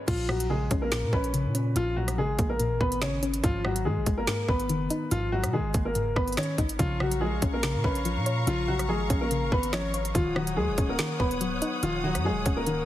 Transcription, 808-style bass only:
0.08 0.68 A#1 loud
0.71 1.04 A#1 loud
1.03 1.12 A#2 loud
1.13 1.47 A#1 loud
1.45 1.74 A#2 loud
1.76 2.19 A#1 loud
2.18 2.38 G#1 loud
2.39 2.72 A#1 loud
2.71 2.80 G#1 loud
2.81 3.41 G#1 loud
3.44 3.87 G#1 loud
3.86 3.98 G#2 loud
3.97 4.06 G#1 loud
4.07 4.27 G#1 loud
4.48 4.71 G#1 loud
4.70 4.89 F#1 loud
5.12 5.45 G#1 loud
5.44 5.60 B2 loud
5.59 5.74 G#1 loud
5.74 5.97 G#1 loud
5.95 6.15 F#1 loud
6.16 6.36 G#1 loud
6.58 6.78 G#1 loud
6.79 7.40 A#1 loud
7.42 7.76 A#1 loud
7.74 7.84 A#2 loud
7.84 8.18 A#1 loud
8.16 8.46 A#2 medium
8.47 8.90 A#1 loud
8.89 9.09 G#1 loud
9.10 9.44 A#1 loud
9.42 9.51 G#1 loud
9.52 10.12 G#1 loud
10.15 10.58 D#1 loud
10.57 10.70 D#2 loud
10.68 10.77 D#1 loud
10.78 10.98 D#1 loud
11.20 11.42 D#1 loud
11.41 11.61 C#1 loud
11.83 12.16 D#1 loud
12.15 12.32 F#2 loud
12.30 12.45 D#1 loud
12.46 12.68 D#1 loud
12.67 12.85 C#1 loud

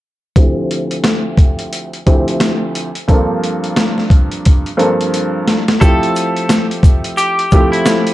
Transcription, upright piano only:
0.36 1.96 D2 loud
0.36 1.96 F3 medium
0.36 1.96 A3 medium
0.36 1.96 C4 medium
0.36 1.96 E4 medium
0.36 1.96 G4 loud
2.06 2.87 D2 medium
2.06 2.87 F3 medium
2.06 2.87 A3 medium
2.06 2.87 C4 medium
2.06 2.87 E4 medium
2.06 2.87 G4 loud
3.08 4.68 G2 medium
3.08 4.68 F3 medium
3.08 4.68 A#3 medium
3.08 4.68 C4 medium
3.08 4.68 D4 medium
3.08 4.68 A4 loud
4.77 5.59 G2 medium
4.77 5.59 F3 medium
4.77 5.59 A#3 medium
4.77 5.59 C4 medium
4.77 5.59 D4 medium
4.77 5.59 A4 loud
5.81 7.41 F3 medium
5.81 7.41 A3 medium
5.81 7.41 C4 medium
5.81 7.41 E4 medium
5.81 7.41 G4 loud
7.53 8.14 F3 medium
7.53 8.14 A3 medium
7.53 8.14 C4 medium
7.53 8.14 E4 medium
7.53 8.14 G4 loud

